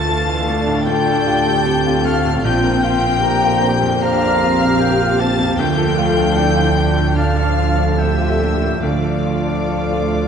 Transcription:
0.00 0.83 D2 medium
0.00 2.41 D2 medium
0.00 2.41 D3 medium
0.00 5.43 D3 medium
0.00 0.20 A3 medium
0.00 0.27 F4 medium
0.00 0.08 A4 medium
0.00 2.41 A4 loud
0.00 0.82 A5 loud
0.00 0.83 A6 loud
0.07 0.47 E3 medium
0.07 0.85 A3 medium
0.07 0.39 A4 medium
0.07 0.88 F5 loud
0.27 0.59 F4 medium
0.46 0.79 A3 medium
0.46 0.86 D4 loud
0.68 0.99 A2 medium
0.86 1.19 A3 medium
0.86 1.67 D4 medium
0.86 1.27 F4 loud
0.86 2.03 G5 loud
0.86 2.06 G5 loud
0.86 2.44 A5 loud
0.86 2.05 G6 loud
1.07 1.39 A4 medium
1.26 1.58 F4 medium
1.26 2.43 G4 loud
1.46 1.78 A3 medium
1.65 3.23 C4 medium
1.65 1.98 A4 medium
1.86 2.18 F4 medium
2.05 2.37 A3 medium
2.05 2.45 F5 loud
2.05 2.44 F5 loud
2.05 2.44 F6 loud
2.25 2.45 A2 medium
2.43 5.55 A#1 loud
2.43 3.98 A#1 medium
2.43 5.55 A#2 medium
2.43 2.83 F4 loud
2.43 5.43 C5 loud
2.43 3.98 G5 loud
2.43 4.02 G5 loud
2.43 2.85 G5 loud
2.43 3.98 G6 loud
2.64 2.95 A#4 medium
2.83 3.22 F4 loud
2.83 3.15 F4 medium
2.83 3.24 F5 loud
3.03 3.35 C4 medium
3.22 4.01 A#3 medium
3.22 5.55 G4 loud
3.22 3.55 A#4 medium
3.22 3.74 A#5 loud
3.43 3.75 F4 medium
3.62 3.94 C4 medium
3.82 4.14 F2 medium
4.01 4.34 C4 medium
4.01 4.40 D4 loud
4.01 5.20 F5 loud
4.01 4.83 A#5 loud
4.01 5.20 F6 loud
4.22 4.53 A#4 medium
4.40 5.59 C4 loud
4.40 4.73 F4 medium
4.61 4.92 C4 medium
4.80 5.12 A#4 medium
4.80 5.22 G5 loud
5.00 5.32 F4 medium
5.19 5.51 C4 medium
5.19 5.59 F5 medium
5.19 5.59 A5 loud
5.19 5.59 A6 loud
5.39 5.59 F2 medium
5.58 8.79 D2 loud
5.58 7.12 D2 medium
5.58 8.78 D3 medium
5.58 7.13 F3 loud
5.58 5.99 A#3 medium
5.58 6.37 F4 loud
5.58 7.13 A4 loud
5.58 7.13 G5 loud
5.58 6.86 G5 loud
5.58 6.00 G5 medium
5.58 7.16 G6 loud
5.78 6.10 A4 medium
5.98 6.38 A3 loud
5.98 6.30 F4 medium
5.98 6.40 F5 medium
6.17 6.49 D4 medium
6.36 6.74 D4 medium
6.36 6.77 E4 medium
6.36 6.68 A4 medium
6.36 7.18 G5 loud
6.56 6.88 F4 medium
6.76 7.99 D4 medium
6.76 7.08 D4 medium
6.96 7.29 A2 medium
7.15 8.80 F3 medium
7.15 7.49 D4 medium
7.15 8.80 A4 loud
7.15 7.99 F5 loud
7.15 7.97 F5 loud
7.15 8.00 A5 medium
7.15 7.97 F6 loud
7.37 7.70 A4 medium
7.58 7.91 F4 medium
7.78 8.11 D4 medium
7.97 8.39 C4 medium
7.97 8.83 G4 medium
7.97 8.32 A4 medium
7.97 8.82 E5 loud
7.97 8.83 E5 loud
7.97 8.81 G5 medium
7.97 8.83 E6 loud
8.20 8.53 F4 medium
8.39 8.83 A#3 medium
8.39 8.75 D4 medium
8.62 8.96 A2 medium
8.82 10.28 D2 medium
8.82 10.28 D3 medium
8.82 10.28 F3 medium
8.82 10.28 A3 medium
8.82 10.28 F4 medium
8.82 10.28 A4 medium
8.82 10.28 D5 medium
8.82 10.28 F5 medium
8.82 10.28 D6 loud
9.05 9.39 A4 medium
9.26 9.61 F4 medium
9.48 9.83 D4 soft
9.69 10.04 A4 medium
9.91 10.26 F4 medium
10.13 10.28 D4 soft

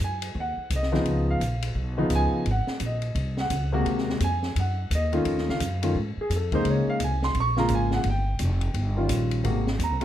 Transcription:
0.00 0.34 F#2 medium
0.00 kick soft
0.00 hi-hat pedal medium
0.00 ride medium
0.04 0.35 G#5 medium
0.22 ride medium
0.35 0.56 D#2 medium
0.35 kick soft
0.40 0.71 F#5 medium
0.57 muted upright bass stroke soft
0.70 1.05 C2 medium
0.70 kick soft
0.70 hi-hat pedal medium
0.70 ride medium
0.76 1.26 D#5 medium
0.83 snare soft
0.92 1.38 C#3 medium
0.92 1.38 F3 medium
0.92 1.38 B3 medium
0.92 1.38 D#4 medium
0.92 snare soft
1.05 1.39 C#2 medium
1.05 kick soft
1.05 ride medium
1.31 1.74 F5 medium
1.40 1.74 A#1 medium
1.40 kick soft
1.40 hi-hat pedal soft
1.40 ride medium
1.62 ride medium
1.75 2.09 B1 medium
1.75 kick soft
1.97 2.43 C#3 medium
1.97 2.43 F3 medium
1.97 2.43 B3 medium
1.97 2.44 D#4 medium
2.10 2.31 C#2 medium
2.10 kick soft
2.10 hi-hat pedal medium
2.10 ride medium
2.15 2.46 G#5 loud
2.33 muted upright bass stroke soft
2.45 2.66 G#1 medium
2.45 kick soft
2.45 ride medium
2.51 2.81 F#5 medium
2.67 snare soft
2.80 3.14 A#1 medium
2.80 kick soft
2.80 hi-hat pedal soft
2.80 ride medium
2.86 3.36 D#5 medium
3.02 ride soft
3.15 3.49 C2 medium
3.15 kick soft
3.15 ride medium
3.37 3.84 F#5 medium
3.37 snare soft
3.50 3.84 C#2 medium
3.50 kick soft
3.50 hi-hat pedal medium
3.50 ride medium
3.73 4.18 C3 medium
3.73 4.18 G#3 medium
3.73 4.18 A#3 medium
3.73 4.19 F#4 medium
3.85 4.19 D#2 medium
3.85 kick soft
3.85 ride medium
3.98 snare soft
4.09 snare soft
4.20 4.54 F2 medium
4.20 4.55 G#5 medium
4.20 kick soft
4.20 hi-hat pedal medium
4.20 ride medium
4.43 snare soft
4.56 4.90 F#2 medium
4.56 kick soft
4.56 ride medium
4.60 4.90 F#5 medium
4.91 5.25 D#2 medium
4.91 kick soft
4.91 hi-hat pedal medium
4.91 ride medium
4.95 5.46 D#5 medium
5.12 5.58 D#3 medium
5.12 5.58 A3 medium
5.12 5.58 C#4 medium
5.12 5.58 F4 medium
5.12 ride soft
5.25 5.36 F2 medium
5.25 kick soft
5.25 ride medium
5.36 5.48 D#2 medium
5.36 snare soft
5.49 5.60 C#2 medium
5.49 5.93 F5 medium
5.49 snare soft
5.60 5.94 F#2 medium
5.60 kick soft
5.60 hi-hat pedal medium
5.60 ride medium
5.82 5.94 D#3 medium
5.82 5.94 A3 medium
5.82 5.94 C#4 medium
5.82 5.95 F4 medium
5.82 ride medium
5.95 6.16 G#2 medium
5.95 kick soft
6.17 6.31 G#4 medium
6.17 muted upright bass stroke soft
6.30 6.64 F2 medium
6.30 6.34 G#4 medium
6.30 kick soft
6.30 hi-hat pedal medium
6.30 ride medium
6.36 6.54 A4 medium
6.52 6.98 C#3 medium
6.52 6.98 G#3 medium
6.52 6.98 A#3 medium
6.52 6.98 D#4 medium
6.52 6.66 C5 medium
6.52 kick soft
6.52 ride soft
6.65 6.85 C#2 medium
6.65 kick soft
6.65 ride medium
6.70 6.89 C#5 medium
6.86 7.01 F5 medium
6.86 muted upright bass stroke soft
7.00 7.34 C2 loud
7.00 kick soft
7.00 hi-hat pedal medium
7.00 ride medium
7.04 7.23 G#5 medium
7.22 7.36 C6 medium
7.22 snare medium
7.34 7.69 A#1 medium
7.34 kick soft
7.34 ride medium
7.40 7.59 C#6 loud
7.57 8.02 C#3 medium
7.57 8.02 G#3 medium
7.57 8.03 A#3 medium
7.57 8.03 F4 medium
7.57 7.71 A#5 medium
7.57 snare soft
7.68 8.03 G#1 medium
7.68 kick soft
7.68 hi-hat pedal medium
7.68 ride medium
7.75 7.94 G#5 medium
7.91 8.06 F#5 medium
7.91 snare soft
8.04 8.38 G1 medium
8.04 kick soft
8.04 ride medium
8.10 9.08 G5 medium
8.39 8.73 F1 medium
8.39 kick soft
8.39 hi-hat pedal medium
8.39 ride medium
8.61 ride medium
8.74 9.08 G1 medium
8.74 kick soft
8.74 ride medium
8.97 9.42 D#3 medium
8.97 9.42 G3 medium
8.97 9.42 C#4 medium
8.97 9.42 F4 medium
9.09 9.43 A#1 medium
9.09 kick soft
9.09 hi-hat pedal medium
9.09 ride medium
9.31 ride medium
9.44 9.78 G#1 medium
9.44 9.64 C3 medium
9.44 9.64 G#3 medium
9.44 9.64 A#3 medium
9.44 9.64 F#4 medium
9.44 kick soft
9.44 ride medium
9.67 snare soft
9.79 9.90 D#2 loud
9.79 kick soft
9.79 hi-hat pedal medium
9.79 ride medium
9.84 10.03 A#5 medium
9.90 10.02 C2 medium
10.01 10.04 D#3 medium
10.01 10.04 A3 medium
10.01 10.04 C#4 medium
10.01 ride soft

